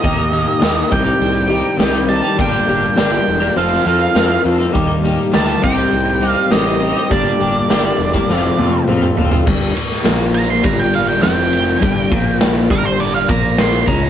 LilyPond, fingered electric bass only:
\new Staff \with { instrumentName = "Fingered electric bass" } { \clef bass \time 4/4 \key g \minor \tempo 4 = 102 ees,4 ees,8 c,8 c,4 c,4 | g,,8 g,,8 g,,8 e,,8 f,,8 f,8 f,8 f,8 | ees,4 d,8 c,8 c,4 a,,4 | g,,8 g,,8 g,,8 e,,8 f,,8 f,8 f,8 fis,,8 |
g,,8 r8 bes,,4 g,,4 f,,4 | g,,8 bes,,4 g,,4 bes,,4 cis,8 | }